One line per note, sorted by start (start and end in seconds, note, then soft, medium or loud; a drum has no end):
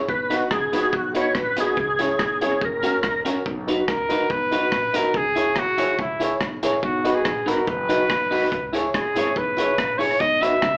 0.09 0.44 B1 loud
0.09 0.38 B4 medium
0.09 kick loud
0.30 0.45 B3 medium
0.30 0.42 D#4 medium
0.30 0.46 D#4 medium
0.30 0.46 F#4 loud
0.30 0.43 F#4 medium
0.30 0.43 B4 medium
0.30 closed hi-hat medium
0.30 tambourine medium
0.36 0.51 F#4 medium
0.51 0.70 C#2 loud
0.51 0.94 G#4 medium
0.51 kick loud
0.51 cross-stick loud
0.72 0.89 D#2 medium
0.72 0.88 B3 medium
0.72 0.88 D#4 medium
0.72 0.85 D#4 medium
0.72 0.85 F#4 medium
0.72 0.88 F#4 loud
0.72 0.86 B4 loud
0.72 closed hi-hat loud
0.72 tambourine medium
0.93 1.29 B1 medium
0.93 1.14 F#4 medium
0.93 kick loud
1.15 1.30 B3 loud
1.15 1.27 D#4 medium
1.15 1.30 D#4 medium
1.15 1.28 F#4 loud
1.15 1.31 F#4 loud
1.15 1.28 B4 loud
1.15 1.36 C#5 loud
1.15 closed hi-hat medium
1.15 tambourine medium
1.35 1.54 A#1 loud
1.35 1.58 B4 loud
1.35 kick loud
1.35 cross-stick loud
1.56 1.75 C2 medium
1.56 1.72 B3 medium
1.56 1.72 D#4 medium
1.56 1.70 D#4 medium
1.56 1.73 F#4 loud
1.56 1.70 F#4 medium
1.56 2.22 G#4 loud
1.56 1.70 B4 medium
1.56 closed hi-hat loud
1.56 tambourine medium
1.77 2.13 C#2 loud
1.77 kick loud
1.99 2.14 C#4 medium
1.99 2.15 E4 medium
1.99 2.12 E4 medium
1.99 2.15 G#4 loud
1.99 2.12 G#4 medium
1.99 2.12 C#5 medium
1.99 closed hi-hat medium
1.99 tambourine medium
2.19 2.38 B1 medium
2.19 2.65 G#4 medium
2.19 kick loud
2.19 cross-stick loud
2.41 2.58 G#1 medium
2.41 2.56 C#4 medium
2.41 2.57 E4 medium
2.41 2.54 E4 medium
2.41 2.57 G#4 loud
2.41 2.54 G#4 medium
2.41 2.55 C#5 medium
2.41 closed hi-hat medium
2.41 tambourine medium
2.61 2.97 F#1 loud
2.61 2.66 F#4 soft
2.61 2.66 A#4 soft
2.61 3.23 A#4 medium
2.61 kick loud
2.83 2.98 C#4 medium
2.83 2.95 C#4 medium
2.83 2.99 F#4 medium
2.83 2.96 F#4 medium
2.83 2.99 A#4 loud
2.83 2.96 A#4 medium
2.83 closed hi-hat medium
2.83 tambourine medium
3.03 3.22 D#2 loud
3.03 kick loud
3.03 cross-stick loud
3.25 3.43 A#1 medium
3.25 3.40 C#4 medium
3.25 3.38 C#4 medium
3.25 3.40 F#4 medium
3.25 3.38 F#4 medium
3.25 3.41 A#4 loud
3.25 3.39 A#4 medium
3.25 closed hi-hat loud
3.25 tambourine medium
3.46 3.82 B1 loud
3.46 kick loud
3.67 3.83 D#4 medium
3.67 3.81 D#4 medium
3.67 3.83 F#4 medium
3.67 3.81 F#4 medium
3.67 3.83 B4 medium
3.67 3.81 B4 medium
3.67 closed hi-hat medium
3.67 tambourine medium
3.88 4.07 C#2 medium
3.88 4.33 A#4 loud
3.88 kick loud
3.88 cross-stick loud
4.09 4.28 D#2 medium
4.09 4.25 D#4 medium
4.09 4.23 D#4 medium
4.09 4.25 F#4 medium
4.09 4.23 F#4 medium
4.09 4.25 B4 loud
4.09 4.23 B4 medium
4.09 closed hi-hat medium
4.09 tambourine medium
4.30 4.66 B1 loud
4.30 4.34 F#4 soft
4.30 4.34 B4 soft
4.30 4.97 B4 loud
4.30 kick loud
4.51 4.67 D#4 medium
4.51 4.64 D#4 medium
4.51 4.67 F#4 medium
4.51 4.65 F#4 medium
4.51 4.68 B4 medium
4.51 4.65 B4 medium
4.51 closed hi-hat medium
4.51 tambourine medium
4.72 4.91 A#1 medium
4.72 kick loud
4.72 cross-stick loud
4.93 5.11 C2 medium
4.93 5.09 D#4 medium
4.93 5.07 D#4 medium
4.93 5.09 F#4 medium
4.93 5.07 F#4 medium
4.93 5.19 A#4 loud
4.93 5.09 B4 loud
4.93 5.08 B4 loud
4.93 closed hi-hat loud
4.93 tambourine medium
5.14 5.50 C#2 loud
5.14 5.60 G#4 loud
5.14 kick loud
5.36 5.48 E4 medium
5.36 5.51 E4 loud
5.36 5.52 G#4 medium
5.36 5.49 G#4 medium
5.36 5.52 C#5 loud
5.36 5.49 C#5 medium
5.36 closed hi-hat medium
5.36 tambourine medium
5.56 5.75 E2 medium
5.56 6.00 F#4 loud
5.56 kick loud
5.56 cross-stick loud
5.78 5.96 D#2 medium
5.78 5.90 E4 medium
5.78 5.94 E4 medium
5.78 5.94 G#4 medium
5.78 5.91 G#4 medium
5.78 5.94 C#5 loud
5.78 5.91 C#5 loud
5.78 closed hi-hat medium
5.78 tambourine medium
5.99 6.35 C#2 medium
5.99 6.39 E4 medium
5.99 6.03 G#4 soft
5.99 6.03 C#5 soft
5.99 kick loud
6.20 6.35 E4 loud
6.20 6.33 E4 medium
6.20 6.36 G#4 medium
6.20 6.33 G#4 medium
6.20 6.36 C#5 loud
6.20 6.34 C#5 medium
6.20 closed hi-hat medium
6.20 tambourine medium
6.41 6.60 B1 medium
6.41 kick loud
6.41 cross-stick loud
6.63 6.80 A#1 medium
6.63 6.78 E4 medium
6.63 6.75 E4 medium
6.63 6.78 G#4 medium
6.63 6.76 G#4 loud
6.63 6.79 C#5 loud
6.63 6.76 C#5 medium
6.63 closed hi-hat loud
6.63 tambourine medium
6.83 7.19 B1 loud
6.83 7.16 F#4 medium
6.83 kick loud
7.04 7.20 D#4 medium
7.04 7.17 D#4 medium
7.04 7.20 F#4 medium
7.04 7.17 F#4 medium
7.04 7.20 B4 loud
7.04 7.18 B4 loud
7.04 closed hi-hat medium
7.04 tambourine medium
7.15 7.50 G#4 medium
7.25 7.44 A#1 medium
7.25 kick loud
7.25 cross-stick loud
7.46 7.65 G#1 medium
7.46 7.62 D#4 medium
7.46 7.59 D#4 medium
7.46 7.62 F#4 medium
7.46 7.60 F#4 loud
7.46 7.68 A#4 medium
7.46 7.62 B4 loud
7.46 7.60 B4 loud
7.46 closed hi-hat loud
7.46 tambourine medium
7.67 8.03 F#1 medium
7.67 7.72 F#4 soft
7.67 7.72 B4 soft
7.67 8.71 B4 loud
7.67 kick loud
7.89 8.04 D#4 medium
7.89 8.01 D#4 loud
7.89 8.05 F#4 medium
7.89 8.02 F#4 medium
7.89 8.05 B4 loud
7.89 8.02 B4 medium
7.89 closed hi-hat loud
7.89 tambourine medium
8.10 8.45 B1 medium
8.10 kick loud
8.10 cross-stick loud
8.31 8.46 D#4 loud
8.31 8.43 D#4 medium
8.31 8.47 F#4 medium
8.31 8.44 F#4 medium
8.31 8.47 B4 loud
8.31 8.44 B4 medium
8.31 open hi-hat medium
8.31 tambourine medium
8.52 8.88 C#2 medium
8.52 kick loud
8.52 hi-hat pedal medium
8.72 8.88 E4 medium
8.72 8.86 E4 medium
8.72 8.89 G#4 medium
8.72 8.86 G#4 medium
8.72 8.89 C#5 loud
8.72 8.87 C#5 medium
8.72 closed hi-hat medium
8.72 tambourine medium
8.94 9.13 A#1 medium
8.94 9.39 G#4 medium
8.94 kick loud
8.94 cross-stick loud
9.15 9.33 G#1 medium
9.15 9.30 E4 medium
9.15 9.28 E4 medium
9.15 9.31 G#4 medium
9.15 9.29 G#4 loud
9.15 9.31 C#5 medium
9.15 9.29 C#5 loud
9.15 closed hi-hat loud
9.15 tambourine medium
9.36 9.72 B1 medium
9.36 9.40 G#4 soft
9.36 10.00 B4 loud
9.36 9.40 C#5 soft
9.36 kick loud
9.57 9.72 E4 medium
9.57 9.70 E4 medium
9.57 9.73 G#4 medium
9.57 9.71 G#4 medium
9.57 9.73 C#5 medium
9.57 closed hi-hat medium
9.57 tambourine medium
9.61 9.71 C#5 medium
9.78 10.14 A#1 medium
9.78 kick loud
9.78 cross-stick loud
9.99 10.11 E4 medium
9.99 10.15 E4 medium
9.99 10.15 G#4 medium
9.99 10.12 G#4 medium
9.99 10.22 C#5 loud
9.99 10.15 C#5 loud
9.99 10.12 C#5 medium
9.99 open hi-hat medium
9.99 tambourine medium
10.20 10.56 B1 loud
10.20 10.44 D#5 loud
10.20 kick loud
10.20 hi-hat pedal medium
10.41 10.54 D#4 medium
10.41 10.57 D#4 medium
10.41 10.54 F#4 medium
10.41 10.57 F#4 medium
10.41 10.57 B4 loud
10.41 10.54 B4 loud
10.41 10.77 E5 loud
10.41 closed hi-hat medium
10.41 tambourine medium
10.62 10.77 C#2 medium
10.62 kick loud
10.62 cross-stick loud